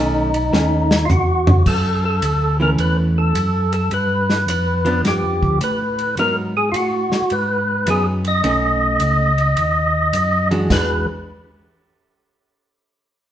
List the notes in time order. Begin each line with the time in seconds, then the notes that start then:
Already playing: B1 D#3 A3 C#4 D#4
0.34 ride
0.52 D#2 D#3 A3 C#4, snare
0.91 snare
1.05 E2 F4, hi-hat pedal
1.10 F#4, floor tom
1.47 floor tom
1.66 F#2 A4, kick, crash
2.05 A4
2.21 D2, hi-hat pedal, ride
2.60 E3 A3 C#4 A#4
2.78 E2 B4, ride
3.18 A4
3.34 F#2, hi-hat pedal, ride
3.72 A4, ride
3.91 G2 B4, ride
4.30 snare
4.47 F2 B4, hi-hat pedal, ride
4.85 F3 B3 D4, ride
5.04 G2 G4, snare, ride
5.23 F2
5.42 D2, kick
5.60 A2 B4, hi-hat pedal, ride
5.99 ride
6.17 G#2 F#3 B3 D#4 A#4, ride
6.57 G#4
6.72 A2 F4, hi-hat pedal, ride
6.76 F#4
7.12 A2, snare
7.30 G#2 B4, ride
7.87 F#2 F#3 B3 D#4 G#4, hi-hat pedal, ride
8.25 D#5, ride
8.43 B1 A3 C#4 D#4, ride
9.00 C#2, hi-hat pedal, ride
9.38 ride
9.57 D#2, ride
10.13 F#2, hi-hat pedal, ride
10.51 E3 G#3 D4 F#4, ride
10.70 E2 E3 G#3 D4 F#4 B4, kick, snare, crash